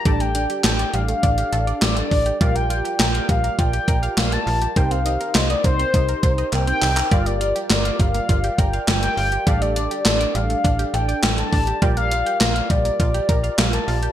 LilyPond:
<<
  \new Staff \with { instrumentName = "Soft synth lead" } { \time 4/4 \key g \minor \tempo 4 = 102 a''16 g''8. g''8 f''4. d''16 d''8. | f''16 g''8. g''8 f''8 g''4 f''16 a''8. | g''16 f''8. ees''16 d''16 c''4. g''16 g''8. | f''16 d''16 d''8 d''8 f''4 g''8 g''16 g''8. |
f''16 d''16 d''8 d''8 f''4 g''8 g''16 a''8. | g''16 f''8. r8 d''4. f''16 a''8. | }
  \new Staff \with { instrumentName = "Analog polysynth" } { \time 4/4 \key g \minor <d' g' a' d''>1 | <f' g' bes' d''>1 | <ees' g' bes' c''>1 | <f' g' bes' d''>1 |
<d' g' a' d''>1 | <f' g' bes' d''>1 | }
  \new Staff \with { instrumentName = "Synth arpeggio sound" } { \time 4/4 \key g \minor g16 a16 d'16 g'16 a'16 d''16 g16 a16 d'16 g'16 a'16 d''16 g16 a16 d'16 g'16 | g16 bes16 f'16 g'16 bes'16 f''16 g16 bes16 f'16 g'16 bes'16 f''16 g16 bes16 f'16 g'16 | bes16 c'16 ees'16 bes'16 c''16 ees''16 bes16 c'16 ees'16 bes'16 c''16 ees''16 bes16 c'16 ees'16 bes'16 | g16 bes16 f'16 g'16 bes'16 f''16 g16 bes16 f'16 g'16 bes'16 f''16 g16 bes16 f'16 g'16 |
g16 a16 d'16 g'16 a'16 d''16 g16 a16 d'16 g'16 a'16 d''16 g16 a16 d'16 g'16 | g16 bes16 f'16 g'16 bes'16 f''16 g16 bes16 f'16 g'16 bes'16 f''16 g16 bes16 f'16 g'16 | }
  \new Staff \with { instrumentName = "FM bass" } { \clef bass \time 4/4 \key g \minor a,,4 a,,8 a,,8 a,,8 a,,8 a,,8 a,,8 | bes,,4 bes,,8 bes,,8 bes,,8 bes,,8 bes,,8 bes,,8 | c,4 c,8 c,8 c,8 c,8 c,8 c,8 | g,,4 g,,8 g,,8 g,,8 g,,8 g,,8 g,,8 |
a,,4 a,,8 a,,8 a,,8 a,,8 a,,8 a,,8 | bes,,4 bes,,8 bes,,8 bes,,8 bes,,8 bes,,8 bes,,8 | }
  \new DrumStaff \with { instrumentName = "Drums" } \drummode { \time 4/4 <hh bd>16 hh16 hh16 hh16 <hc hh sn>16 hh16 hh16 hh16 <hh bd>16 hh16 hh16 hh16 <hc hh sn>16 hh16 <hho bd>16 hh16 | <hh bd>16 hh16 hh16 hh16 <hc hh sn>16 hh16 <hh bd>16 hh16 <hh bd>16 hh16 <hh bd>16 hh16 <hc hh sn>16 hh16 hho16 hh16 | <hh bd>16 hh16 hh16 hh16 <hc hh sn>16 hh16 <hh bd>16 hh16 <hh bd>16 hh16 <hh bd>16 hh16 <hc hh>16 hh16 <hc hho>16 <hc hh>16 | <hh bd>16 hh16 hh16 hh16 <hc hh sn>16 hh16 <hh bd>16 hh16 <hh bd>16 hh16 <hh bd>16 hh16 <hc hh sn>16 hh16 hho16 hh16 |
<hh bd>16 hh16 hh16 hh16 <hc hh sn>16 hh16 hh16 hh16 <hh bd>16 hh16 hh16 hh16 <hc hh sn>16 hh16 <hho bd>16 hh16 | <hh bd>16 hh16 hh16 hh16 <hc hh sn>16 hh16 <hh bd>16 hh16 <hh bd>16 hh16 <hh bd>16 hh16 <hc hh sn>16 hh16 hho16 hh16 | }
>>